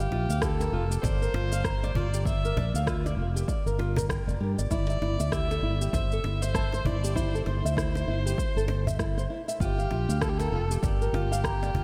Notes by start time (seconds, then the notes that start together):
Already playing: G4
0.00 F5
0.11 A#1 F4, cajon slap
0.29 D2 F5, shaker
0.41 G4 A4, kick, cross-stick, shaker
0.60 A#4, cajon slap, shaker
0.72 F1 F4
0.91 G4, shaker
1.03 G1 C5 D5, kick, cajon bass, shaker
1.22 A#4, shaker
1.34 G1 F4, cajon slap
1.52 F5, shaker
1.64 A#5, kick, cross-stick, shaker
1.83 D5, cajon slap, shaker
1.95 G1 F4 D5, cajon bass
2.14 G4, shaker
2.25 D5 E5, kick, shaker
2.45 A#4, shaker
2.57 A#1 D5, cajon bass, cajon slap
2.74 D2 F5, shaker
2.87 F4, kick, cross-stick, shaker
3.06 D5, cajon slap, shaker
3.17 F1 F4
3.36 G4, shaker
3.48 D5, kick, shaker
3.66 G1 A#4, shaker
3.79 F4, cajon slap
3.96 A#4, cajon bass, cross-stick, shaker
4.09 G5, kick, cross-stick, shaker
4.27 F1 D5, shaker
4.40 G2 G4
4.58 G1 D5, shaker
4.71 G1 E4 D5, kick, shaker
4.89 E5, shaker
5.02 G1 E4, cajon slap
5.20 D2 E5, shaker
5.32 G4 E5, kick, cross-stick, shaker
5.51 A4, cajon slap, shaker
5.62 G1 E4
5.81 G4, shaker
5.93 G1 C5 E5, kick, cajon bass, shaker
6.12 A4, shaker
6.24 G1 E4, cajon slap
6.42 C5 E5, shaker
6.55 A5, kick, cross-stick, shaker
6.72 C5, cajon slap, shaker
6.85 G1 E4 D5, cajon bass
7.04 G4, shaker
7.16 E4 C5, kick, shaker
7.34 A4, shaker
7.46 G1 C5, cajon slap
7.65 D2 E5, shaker
7.77 E4, kick, cross-stick, shaker
7.95 C5, cajon slap, shaker
8.08 G1 E4
8.26 G4, shaker
8.38 C5, kick, shaker
8.56 G1 A4, shaker
8.68 C5, cajon slap
8.87 E5, cajon bass, shaker
8.99 E4, kick, cross-stick, shaker
9.18 C5, shaker
9.30 E4
9.48 E5, shaker
9.60 G1 F4 G4, kick, shaker
9.78 F5, shaker
9.91 A#1 F4, cajon slap
10.09 D2 F5, shaker
10.21 G4 A4, kick, cross-stick, shaker
10.29 G4
10.38 A4 A#4, cajon slap, shaker
10.52 F1 F4
10.71 G4, shaker
10.82 G1 G4 D5, kick, cajon bass, shaker
11.02 A#4, shaker
11.13 G1 F4, cajon slap
11.32 F5, shaker
11.44 A#5, kick, cross-stick, shaker
11.62 D5, cajon slap, shaker
11.75 G1 F4, cajon bass